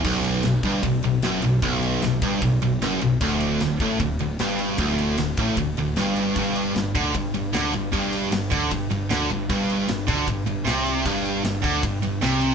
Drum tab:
CC |x-------|--------|--------|--------|
RD |-xxxxxxx|xxxxxxxx|xxxxxxxx|xxxxxxxx|
SD |--o---o-|--o---o-|--o---o-|--o---o-|
BD |o--oo---|o--oo---|o--oo---|o--oo---|

CC |--------|--------|--------|--------|
RD |xxxxxxxx|xxxxxxxx|xxxxxxxx|xxxxxxxx|
SD |--o---o-|--o---o-|--o---o-|--o---o-|
BD |o--oo---|o--oo---|o--oo---|o--oo---|